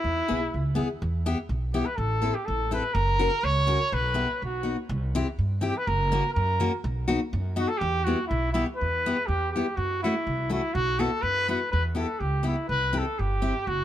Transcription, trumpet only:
Already playing: E4
1.74 G4
1.85 B4
1.96 A4
2.34 G4
2.45 A4
2.74 B4
2.94 A#4
3.44 C#5
3.94 B4
4.45 F#4
5.67 G4
5.77 B4
5.87 A#4
6.33 A#4
7.59 F#4
7.68 A4
7.78 G4
8.04 F#4
8.27 E4
8.53 E4
8.76 B4
9.26 G4
9.52 G4
9.76 F#4
10.03 E4
10.52 E4
10.74 F#4
11.00 A4
11.22 B4
11.50 B4
11.72 B4
11.97 A4
12.19 G4
12.46 E4
12.69 B4
12.98 A4
13.19 G4
13.67 F#4

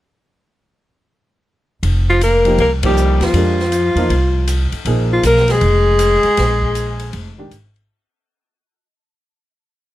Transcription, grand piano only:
2.45 F3 A#3 D#4 G4
2.83 F3 A#3 D#4 G4
3.35 G#3 D4 G4 A#4
3.97 F3 A#3 D#4 F4
4.86 F3 A#3 D#4 G#4
7.38 D#3 G#3 D4 G4

